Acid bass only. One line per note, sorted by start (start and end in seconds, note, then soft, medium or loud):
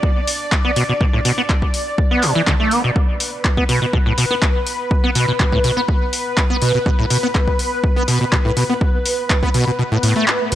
0.65 0.71 B3 medium
0.76 0.83 B2 medium
0.89 0.93 B2 medium
1.01 1.05 B2 medium
1.13 1.20 A2 medium
1.25 1.32 B2 medium
1.38 1.42 B3 medium
2.11 2.24 B3 medium
2.23 2.33 B2 medium
2.35 2.42 E3 medium
2.47 2.54 D3 medium
2.60 2.73 A3 medium
2.71 2.82 B3 medium
2.84 2.91 B2 medium
3.57 3.64 B3 medium
3.69 3.79 B2 medium
3.82 3.86 B2 medium
3.93 3.98 B2 medium
4.06 4.13 A2 medium
4.18 4.25 B2 medium
4.30 4.34 B3 medium
5.04 5.10 B3 medium
5.15 5.26 B2 medium
5.28 5.32 B2 medium
5.40 5.44 B2 medium
5.52 5.59 A2 medium
5.64 5.71 B2 medium
5.77 5.81 B3 medium
6.50 6.56 B3 medium
6.62 6.72 B2 medium
6.74 6.78 B2 medium
6.86 6.90 B2 medium
6.99 7.05 A2 medium
7.11 7.17 B2 medium
7.23 7.27 B3 medium
7.96 8.03 B3 medium
8.08 8.19 B2 medium
8.21 8.25 B2 medium
8.32 8.37 B2 medium
8.45 8.52 A2 medium
8.57 8.64 B2 medium
8.69 8.73 B3 medium
9.43 9.49 B3 medium
9.54 9.65 B2 medium
9.67 9.71 B2 medium
9.79 9.83 B2 medium
9.91 9.98 A2 medium
10.03 10.14 A2 loud
10.16 10.25 A3 medium
10.52 10.55 B1 medium